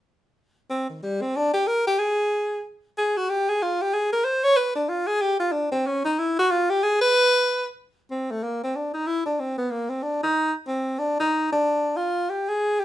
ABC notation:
X:1
M:4/4
L:1/16
Q:"Swing" 1/4=186
K:Cm
V:1 name="Tenor saxophone"
z8 C2 E,2 G,2 C2 | D2 G2 B2 G2 A8 | z4 A2 ^F2 G2 A2 =F2 G2 | A2 B2 c2 _d2 =B2 =D2 F2 A2 |
G2 F2 D2 C2 _D2 E2 =E2 ^F2 | F2 G2 A2 =B8- B z | z4 C2 =A,2 B,2 C2 D2 E2 | =E2 D2 C2 =B,2 _B,2 C2 D2 _E2- |
E2 z2 C4 D2 E4 D2- | D4 F4 G2 A4 G2 |]